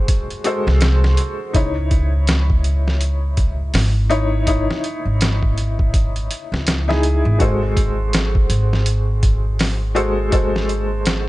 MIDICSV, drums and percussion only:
0, 0, Header, 1, 2, 480
1, 0, Start_track
1, 0, Key_signature, 4, "minor"
1, 0, Tempo, 731707
1, 1015, Time_signature, 4, 2, 24, 8
1, 7405, End_track
2, 0, Start_track
2, 0, Title_t, "Drums"
2, 54, Note_on_c, 9, 42, 91
2, 55, Note_on_c, 9, 36, 110
2, 120, Note_off_c, 9, 36, 0
2, 120, Note_off_c, 9, 42, 0
2, 200, Note_on_c, 9, 42, 44
2, 265, Note_off_c, 9, 42, 0
2, 291, Note_on_c, 9, 42, 69
2, 357, Note_off_c, 9, 42, 0
2, 444, Note_on_c, 9, 38, 47
2, 510, Note_off_c, 9, 38, 0
2, 529, Note_on_c, 9, 42, 84
2, 538, Note_on_c, 9, 38, 118
2, 595, Note_off_c, 9, 42, 0
2, 603, Note_off_c, 9, 38, 0
2, 684, Note_on_c, 9, 38, 51
2, 749, Note_off_c, 9, 38, 0
2, 770, Note_on_c, 9, 42, 69
2, 835, Note_off_c, 9, 42, 0
2, 1014, Note_on_c, 9, 36, 103
2, 1014, Note_on_c, 9, 42, 83
2, 1079, Note_off_c, 9, 36, 0
2, 1079, Note_off_c, 9, 42, 0
2, 1253, Note_on_c, 9, 42, 64
2, 1254, Note_on_c, 9, 36, 89
2, 1318, Note_off_c, 9, 42, 0
2, 1319, Note_off_c, 9, 36, 0
2, 1492, Note_on_c, 9, 42, 91
2, 1501, Note_on_c, 9, 38, 126
2, 1558, Note_off_c, 9, 42, 0
2, 1566, Note_off_c, 9, 38, 0
2, 1639, Note_on_c, 9, 36, 99
2, 1704, Note_off_c, 9, 36, 0
2, 1734, Note_on_c, 9, 42, 73
2, 1799, Note_off_c, 9, 42, 0
2, 1887, Note_on_c, 9, 38, 40
2, 1952, Note_off_c, 9, 38, 0
2, 1972, Note_on_c, 9, 42, 88
2, 2038, Note_off_c, 9, 42, 0
2, 2212, Note_on_c, 9, 42, 73
2, 2214, Note_on_c, 9, 36, 94
2, 2277, Note_off_c, 9, 42, 0
2, 2280, Note_off_c, 9, 36, 0
2, 2451, Note_on_c, 9, 46, 80
2, 2460, Note_on_c, 9, 38, 122
2, 2517, Note_off_c, 9, 46, 0
2, 2525, Note_off_c, 9, 38, 0
2, 2694, Note_on_c, 9, 42, 67
2, 2759, Note_off_c, 9, 42, 0
2, 2932, Note_on_c, 9, 42, 82
2, 2934, Note_on_c, 9, 36, 102
2, 2997, Note_off_c, 9, 42, 0
2, 3000, Note_off_c, 9, 36, 0
2, 3087, Note_on_c, 9, 38, 44
2, 3152, Note_off_c, 9, 38, 0
2, 3174, Note_on_c, 9, 42, 65
2, 3240, Note_off_c, 9, 42, 0
2, 3416, Note_on_c, 9, 42, 97
2, 3425, Note_on_c, 9, 38, 122
2, 3482, Note_off_c, 9, 42, 0
2, 3490, Note_off_c, 9, 38, 0
2, 3559, Note_on_c, 9, 36, 96
2, 3625, Note_off_c, 9, 36, 0
2, 3658, Note_on_c, 9, 42, 67
2, 3723, Note_off_c, 9, 42, 0
2, 3800, Note_on_c, 9, 36, 100
2, 3865, Note_off_c, 9, 36, 0
2, 3895, Note_on_c, 9, 36, 110
2, 3896, Note_on_c, 9, 42, 87
2, 3961, Note_off_c, 9, 36, 0
2, 3961, Note_off_c, 9, 42, 0
2, 4040, Note_on_c, 9, 42, 48
2, 4106, Note_off_c, 9, 42, 0
2, 4137, Note_on_c, 9, 42, 72
2, 4202, Note_off_c, 9, 42, 0
2, 4288, Note_on_c, 9, 38, 49
2, 4354, Note_off_c, 9, 38, 0
2, 4373, Note_on_c, 9, 42, 91
2, 4381, Note_on_c, 9, 38, 120
2, 4439, Note_off_c, 9, 42, 0
2, 4447, Note_off_c, 9, 38, 0
2, 4530, Note_on_c, 9, 38, 52
2, 4595, Note_off_c, 9, 38, 0
2, 4614, Note_on_c, 9, 42, 72
2, 4679, Note_off_c, 9, 42, 0
2, 4854, Note_on_c, 9, 36, 110
2, 4855, Note_on_c, 9, 42, 83
2, 4920, Note_off_c, 9, 36, 0
2, 4920, Note_off_c, 9, 42, 0
2, 5095, Note_on_c, 9, 36, 96
2, 5096, Note_on_c, 9, 42, 68
2, 5160, Note_off_c, 9, 36, 0
2, 5162, Note_off_c, 9, 42, 0
2, 5335, Note_on_c, 9, 42, 94
2, 5344, Note_on_c, 9, 38, 127
2, 5401, Note_off_c, 9, 42, 0
2, 5409, Note_off_c, 9, 38, 0
2, 5478, Note_on_c, 9, 36, 95
2, 5544, Note_off_c, 9, 36, 0
2, 5574, Note_on_c, 9, 42, 75
2, 5640, Note_off_c, 9, 42, 0
2, 5727, Note_on_c, 9, 38, 40
2, 5793, Note_off_c, 9, 38, 0
2, 5812, Note_on_c, 9, 42, 94
2, 5877, Note_off_c, 9, 42, 0
2, 6054, Note_on_c, 9, 36, 102
2, 6054, Note_on_c, 9, 42, 75
2, 6119, Note_off_c, 9, 42, 0
2, 6120, Note_off_c, 9, 36, 0
2, 6293, Note_on_c, 9, 46, 84
2, 6302, Note_on_c, 9, 38, 114
2, 6359, Note_off_c, 9, 46, 0
2, 6367, Note_off_c, 9, 38, 0
2, 6535, Note_on_c, 9, 42, 68
2, 6601, Note_off_c, 9, 42, 0
2, 6771, Note_on_c, 9, 42, 86
2, 6774, Note_on_c, 9, 36, 104
2, 6837, Note_off_c, 9, 42, 0
2, 6839, Note_off_c, 9, 36, 0
2, 6926, Note_on_c, 9, 38, 42
2, 6992, Note_off_c, 9, 38, 0
2, 7015, Note_on_c, 9, 42, 65
2, 7080, Note_off_c, 9, 42, 0
2, 7252, Note_on_c, 9, 42, 91
2, 7261, Note_on_c, 9, 38, 121
2, 7318, Note_off_c, 9, 42, 0
2, 7326, Note_off_c, 9, 38, 0
2, 7405, End_track
0, 0, End_of_file